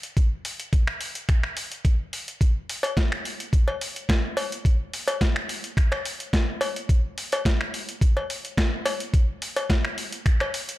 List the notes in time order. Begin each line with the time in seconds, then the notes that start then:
0.03 closed hi-hat
0.17 kick, closed hi-hat
0.45 open hi-hat
0.60 closed hi-hat
0.73 kick, closed hi-hat
0.87 finger snap
1.01 open hi-hat
1.15 closed hi-hat
1.29 finger snap, kick, closed hi-hat
1.43 finger snap
1.57 open hi-hat
1.72 closed hi-hat
1.85 kick, closed hi-hat
2.13 open hi-hat
2.28 closed hi-hat
2.41 kick, closed hi-hat
2.69 open hi-hat
2.83 closed hi-hat, cowbell
2.97 kick, snare, closed hi-hat
3.12 finger snap
3.25 open hi-hat
3.40 closed hi-hat
3.53 kick, closed hi-hat
3.68 cowbell
3.81 open hi-hat
3.96 closed hi-hat
4.09 finger snap, kick, snare, closed hi-hat
4.37 open hi-hat, cowbell
4.52 closed hi-hat
4.65 kick, closed hi-hat
4.93 open hi-hat
5.08 closed hi-hat, cowbell
5.21 kick, snare, closed hi-hat
5.36 finger snap
5.49 open hi-hat
5.64 closed hi-hat
5.77 finger snap, kick, closed hi-hat
5.92 finger snap, cowbell
6.05 open hi-hat
6.20 closed hi-hat
6.33 kick, snare, closed hi-hat
6.61 open hi-hat, cowbell
6.76 closed hi-hat
6.89 kick, closed hi-hat
7.18 open hi-hat
7.32 closed hi-hat, cowbell
7.45 kick, snare, closed hi-hat
7.61 finger snap
7.74 open hi-hat
7.89 closed hi-hat
8.01 kick, closed hi-hat
8.17 cowbell
8.30 open hi-hat
8.45 closed hi-hat
8.58 finger snap, kick, snare, closed hi-hat
8.86 open hi-hat, cowbell
9.00 closed hi-hat
9.14 kick, closed hi-hat
9.42 open hi-hat
9.56 closed hi-hat, cowbell
9.70 kick, snare, closed hi-hat
9.85 finger snap
9.98 open hi-hat
10.12 closed hi-hat
10.26 finger snap, kick, closed hi-hat
10.40 finger snap, cowbell
10.54 open hi-hat
10.69 closed hi-hat